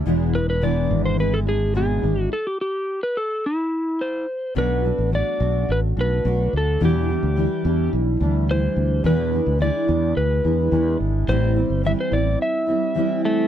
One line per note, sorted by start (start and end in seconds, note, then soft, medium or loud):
0.06 0.87 E1 medium
0.06 0.34 E2 medium
0.06 0.34 B2 medium
0.06 0.34 E3 medium
0.06 0.34 G#3 medium
0.06 0.33 D4 medium
0.06 0.33 E4 medium
0.34 0.61 E3 soft
0.34 0.61 G#3 soft
0.34 0.61 D4 soft
0.34 0.62 E4 soft
0.34 0.48 B4 medium
0.50 0.63 B4 medium
0.61 1.18 E2 medium
0.61 1.18 B2 medium
0.61 1.17 E3 medium
0.61 1.18 G#3 medium
0.61 1.19 D4 medium
0.61 1.20 E4 medium
0.61 1.05 D5 medium
0.91 1.99 G#1 medium
1.06 1.19 C5 medium
1.18 1.46 E3 medium
1.18 1.46 G#3 medium
1.18 1.45 D4 medium
1.18 1.44 E4 medium
1.18 1.34 B4 medium
1.34 1.39 A4 medium
1.46 1.74 E3 soft
1.46 1.74 G#3 soft
1.46 1.74 D4 soft
1.46 1.74 E4 soft
1.46 1.76 G#4 medium
1.74 2.03 E2 medium
1.74 2.03 B2 medium
1.74 2.03 E3 medium
1.74 2.03 G#3 medium
1.74 2.02 D4 medium
1.74 2.01 E4 medium
1.74 2.22 G#4 medium
2.02 2.26 G#1 medium
2.02 2.32 E3 soft
2.02 2.32 G#3 soft
2.02 2.31 D4 soft
2.02 2.31 E4 soft
2.22 2.33 F#4 medium
2.33 2.45 A4 medium
2.47 2.60 G4 medium
2.61 3.00 G4 medium
3.03 3.17 B4 medium
3.17 3.44 A4 medium
3.46 4.25 E4 medium
4.01 4.53 C5 medium
4.55 4.91 B1 medium
4.55 4.84 B2 medium
4.55 4.84 F#3 medium
4.55 4.84 A3 medium
4.55 4.83 D4 medium
4.55 4.82 F#4 medium
4.55 5.09 B4 medium
4.84 5.11 A3 soft
4.84 5.12 D4 soft
4.84 5.12 F#4 medium
4.98 5.21 A1 medium
5.12 5.40 F#3 medium
5.12 5.40 A3 medium
5.12 5.40 D4 medium
5.12 5.39 F#4 medium
5.12 5.71 D5 medium
5.40 5.63 B1 medium
5.40 5.97 A3 soft
5.40 5.97 D4 soft
5.40 5.95 F#4 medium
5.69 5.92 A1 medium
5.69 5.79 B4 medium
5.97 6.20 B1 medium
5.97 6.23 A3 soft
5.97 6.24 D4 soft
5.97 6.25 F#4 soft
6.01 6.56 B4 medium
6.24 6.48 B1 loud
6.24 6.80 F#3 soft
6.24 6.81 A3 medium
6.24 6.81 D4 medium
6.24 6.81 F#4 medium
6.53 6.76 D2 medium
6.57 6.81 A4 medium
6.80 7.08 E2 medium
6.80 7.15 E2 medium
6.80 7.09 B2 medium
6.80 7.09 E3 medium
6.80 7.08 G3 medium
6.80 7.08 D4 medium
6.80 7.07 E4 medium
6.85 7.91 G4 medium
7.08 7.35 E3 soft
7.08 7.36 G3 soft
7.08 7.36 D4 soft
7.08 7.36 E4 medium
7.23 7.46 D2 medium
7.36 7.64 E3 medium
7.36 7.64 G3 medium
7.36 7.64 D4 medium
7.36 7.63 E4 medium
7.64 7.88 E2 loud
7.64 8.22 E3 soft
7.64 8.21 G3 soft
7.64 8.21 D4 medium
7.64 8.20 E4 medium
7.93 8.16 B1 medium
8.20 8.67 D2 medium
8.20 8.46 E3 soft
8.20 8.47 G3 soft
8.20 8.48 D4 medium
8.20 8.48 E4 medium
8.48 9.04 E3 medium
8.48 9.04 G3 medium
8.48 9.05 D4 medium
8.48 9.05 E4 medium
8.48 9.06 C5 medium
8.76 8.99 D2 medium
9.04 9.32 E2 medium
9.04 9.39 E2 medium
9.04 9.32 B2 medium
9.04 9.32 E3 medium
9.04 9.32 G#3 medium
9.04 9.31 D4 medium
9.04 9.31 E4 medium
9.04 9.58 B4 medium
9.32 9.58 E3 soft
9.32 9.59 G#3 soft
9.32 9.60 D4 soft
9.32 9.60 E4 medium
9.46 9.69 D2 medium
9.59 9.88 E3 medium
9.59 9.88 G#3 medium
9.59 9.87 D4 medium
9.59 9.86 E4 medium
9.59 10.13 D5 loud
9.87 10.12 E2 medium
9.87 10.45 E3 soft
9.87 10.44 G#3 soft
9.87 10.43 D4 soft
9.87 10.43 E4 medium
10.16 10.39 D2 medium
10.16 10.97 B4 medium
10.44 10.67 E2 medium
10.44 10.70 E3 soft
10.44 10.71 G#3 soft
10.44 10.71 D4 soft
10.44 10.72 E4 soft
10.71 10.95 E2 loud
10.71 11.28 E3 medium
10.71 11.28 G#3 medium
10.71 11.28 D4 medium
10.71 11.29 E4 medium
11.00 11.23 G#1 medium
11.28 11.62 A1 medium
11.28 11.56 A2 medium
11.28 11.56 E3 medium
11.28 11.55 G3 medium
11.28 11.55 C4 medium
11.28 11.53 E4 medium
11.28 11.81 C5 medium
11.55 11.83 G3 soft
11.55 11.84 C4 soft
11.55 11.83 E4 soft
11.70 11.93 G1 medium
11.83 12.12 E3 medium
11.83 12.12 G3 medium
11.83 12.11 C4 medium
11.83 12.10 E4 medium
11.83 11.92 E5 loud
12.01 12.14 C5 medium
12.11 12.35 A1 medium
12.11 12.68 G3 soft
12.11 12.67 C4 soft
12.11 12.65 E4 medium
12.11 12.41 D5 medium
12.42 13.21 E5 medium
12.67 12.94 G3 soft
12.67 12.95 C4 soft
12.67 12.95 E4 soft
12.95 13.47 E3 medium
12.95 13.47 G3 medium
12.95 13.47 C4 medium
12.95 13.47 E4 medium
13.25 13.47 A3 medium